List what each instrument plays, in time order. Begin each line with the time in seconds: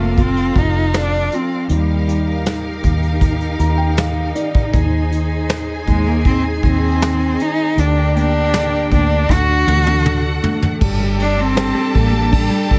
Already playing: fingered electric bass F1, upright piano F3, string section C4 F4 A4 F5
0.01 cello A#3
0.18 upright piano F3, cello C4, kick, closed hi-hat
0.37 closed hi-hat
0.56 fingered electric bass F1, upright piano F3, cello D#4, kick, closed hi-hat
0.94 upright piano F3, cello D4, snare, closed hi-hat
1.32 upright piano F3, cello C4, closed hi-hat
1.69 fingered electric bass D#2, upright piano D#3, cello G3, string section D#4 G4 A#4 F5, closed hi-hat
2.07 upright piano D#3, closed hi-hat
2.45 upright piano D#3, snare, closed hi-hat
2.84 fingered electric bass D#2, upright piano D#3, kick, closed hi-hat
3.03 closed hi-hat
3.21 upright piano D#3, kick, closed hi-hat
3.40 closed hi-hat
3.59 fingered electric bass D#2, upright piano D#3 A#5, closed hi-hat
3.78 upright piano G5
3.97 upright piano D#3 F5, snare, closed hi-hat
4.35 upright piano D#3 D5, closed hi-hat
4.55 kick
4.73 fingered electric bass D#2, upright piano D#3, string section G#4 C5 G#5, kick, closed hi-hat
5.11 upright piano D#3, closed hi-hat
5.49 upright piano D#3, snare, closed hi-hat
5.87 fingered electric bass D#2, upright piano D#3, cello G#3, kick, closed hi-hat
6.07 cello A#3, closed hi-hat
6.25 upright piano D#3, cello C4, kick, closed hi-hat
6.63 fingered electric bass D#2, upright piano D#3, cello C4, kick, closed hi-hat
7.02 upright piano D#3, snare, closed hi-hat
7.40 upright piano D#3, cello D#4, closed hi-hat
7.77 fingered electric bass D2, upright piano D3, string section D4 G4 A#4 G5, cello D4, closed hi-hat
8.16 upright piano A#3, cello D4, closed hi-hat
8.53 upright piano D3, snare, closed hi-hat
8.91 fingered electric bass D2, upright piano A#3, cello D4, kick, closed hi-hat
9.29 fingered electric bass D2, upright piano D3, string section F#4 A4 F#5, cello F#4, kick, snare
9.67 fingered electric bass D2, upright piano A3, high tom
9.87 high tom
10.04 upright piano D3, mid tom
10.43 upright piano A3, floor tom
10.62 floor tom
10.81 fingered electric bass G1, upright piano G3, string section D4 G4 A4 G5, violin section A4 A5, kick, crash
10.99 upright piano G3
11.19 upright piano G3, cello D4, ride
11.38 upright piano G3, cello C4
11.56 upright piano G3, snare, ride
11.74 upright piano G3
11.94 fingered electric bass A1, upright piano G3, cello A#3, kick, ride
12.13 upright piano G3
12.32 cello G3, upright piano D4, kick, ride
12.50 upright piano G3
12.71 fingered electric bass G1, upright piano G3, cello G3, kick, ride